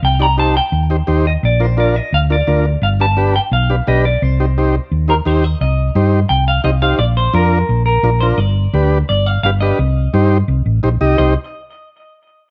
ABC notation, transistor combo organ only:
X:1
M:4/4
L:1/8
Q:1/4=172
K:Cdor
V:1 name="Transistor combo organ"
z [EGd] [EGc] z2 [EGc] [EGc] z | z [DFB] [DFB] z2 [DFB] [DFB] z | z [DG=B] [DGB] z2 [DGB] [DGB] z | z [EGc] [EGc] z2 [EGc] [EGc] z |
z2 [EGc] z3 [EGc] [EGc] | z2 [DFB] z3 [DFB] [DFB] | z2 [DG=B] z3 [DGB] [DGB] | z2 [EGc] z3 [EGc] [EGe] |
[EGc] z6 z |]